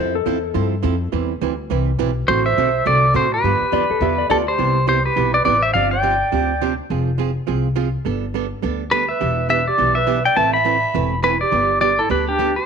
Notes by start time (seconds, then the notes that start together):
Already playing: F2 F3 C4 E4 A4
0.00 C5
0.15 A4
0.26 E2 F3 C4 E4 A4
0.54 G2 F3 C4 E4 A4
0.83 F2 F3 C4 E4 A4
1.12 E2 E3 G3 C4 E4 B4
1.41 D2 E3 G3 C4 E4 B4
1.70 C2 E3 G3 C4 E4 B4
1.99 B1 E3 G3 C4 E4 B4
2.28 A1 D3 A3 C4 F#4 A4 C5
2.45 C5 E5
2.57 B1 D3 A3 C4 F#4 A4
2.86 C2 D3 A3 C4 F#4 A4 D5
3.14 A2 D3 A3 C4 F#4 A4 C5
3.34 G4 B4
3.44 G2 D3 F3 B3 D4 G4
3.61 muted upright bass stroke
3.72 F2 D3 F3 B3 D4 G4 D5
3.90 A4, muted upright bass stroke
4.01 E2 D3 F3 B3 D4 G4 E5
4.18 D5
4.30 D2 D3 F3 B3 D4 F4 G4 A4 D5
4.48 G4 C5
4.58 C2 C3 G3 B3 E4 G4
4.87 C3 G3 B3 E4 G4 C5
5.06 G4 B4
5.16 B1 C3 G3 B3 E4 G4
5.34 B4 D5
5.45 A1 C3 G3 B3 E4 G4 B4 D5
5.63 C5 E5
5.74 G1 C3 F3 C4 D4 G4 D5 F5
5.91 D5 G5
6.03 C3 F3 C4 D4 G4
6.32 D2 C3 F3 C4 D4 G4
6.61 C3 F3 C4 D4 G4
6.90 F1 F3 C4 F4 G#4
7.18 F3 C4 F4 G#4
7.47 C2 F3 C4 F4 G#4
7.76 F3 C4 F4 G#4
8.05 G1 G3 B3 D4 A4
8.34 G3 B3 D4 A4
8.62 D2 G3 B3 D4 A4
8.91 G3 B3 D4 G4 A4 B4
9.09 B4 E5
9.21 E1 E3 B3 D4 G4
9.49 E3 B3 D4 G4 B4 E5
9.67 G4 D5
9.78 B1 E3 B3 D4 G4
9.95 B4 E5
10.07 E3 B3 D4 G4
10.25 D5 G5
10.36 A1 E3 A3 C4 E4 B4 E5 A5
10.53 E5 B5
10.65 E3 A3 C4 E4 B4
10.94 E1 E3 A3 C4 E4 B4
11.23 E3 A3 C4 E4 B4
11.41 G4 D5
11.52 G1 D3 G3 B3 D4 G4
11.81 D3 G3 B3 D4 G4 D5
11.99 E4 A4
12.09 D2 D3 G3 B3 D4 G4 B4
12.28 D4 G4
12.39 D3 G3 B3 D4 G4
12.56 G4 C5